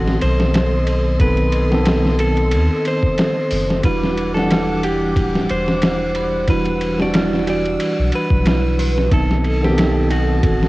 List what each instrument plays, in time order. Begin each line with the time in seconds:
Already playing: sub bass A1, tine electric piano D#3 B3 C4 A4, clean electric guitar F#4, string section A4 D#5 C6
0.07 snare
0.21 sub bass B1, clean electric guitar C5, ride
0.40 snare
0.54 snare, ride
0.87 ride
1.20 sub bass B1, tine electric piano D#3 B3 C4 A4, clean electric guitar B4, kick, ride
1.37 ride
1.52 ride
1.70 tine electric piano D#3 B3 C4 A4, snare
1.85 snare, ride
2.05 snare
2.19 clean electric guitar A4, ride
2.37 ride
2.51 sub bass D#2, ride
2.85 clean electric guitar C5, ride
3.03 kick
3.18 snare, ride
3.51 sub bass F#1, open hi-hat
3.70 snare
3.84 sub bass E1, tine electric piano E3 G3 D4 F#4, string section G3 F#5 D6, synth bell E4, clean electric guitar B4, kick, ride
4.04 snare
4.18 ride
4.34 tine electric piano E3 G3 D4, clean electric guitar A4, snare
4.39 tine electric piano F#5
4.50 synth bell E4, snare, ride
4.83 clean electric guitar G4, synth bell F#5, ride
5.16 sub bass D1, kick, ride
5.35 snare
5.49 sub bass E1, clean electric guitar C5, ride
5.68 snare
5.82 synth bell E4, snare, ride
6.14 synth bell B5, ride
6.47 sub bass E1, tine electric piano E3 G3 D4 F#4, synth bell E4, clean electric guitar B4, string section E6, kick, ride
6.65 ride
6.81 ride
6.98 tine electric piano E3 G3 D4 F#4, clean electric guitar D5, snare
7.13 synth bell E4, snare, ride
7.33 snare
7.47 synth bell F#4, clean electric guitar D5, ride
7.65 ride
7.80 ride
7.99 sub bass B1
8.12 clean electric guitar B4, ride
8.30 sub bass B1, kick
8.46 synth bell E4, snare, ride
8.79 synth bell B4, open hi-hat
8.98 snare
9.11 sub bass B1, tine electric piano D#3 B3 C4 A4, synth bell D#4, string section A4 D#5 A5, clean electric guitar A4, kick, ride
9.31 snare
9.44 ride
9.61 tine electric piano D#3 B3 C4 A4, clean electric guitar G4, snare
9.77 synth bell D#4, snare, ride
10.10 synth bell F#4, clean electric guitar F#4, ride
10.43 sub bass A1, kick, ride
10.63 snare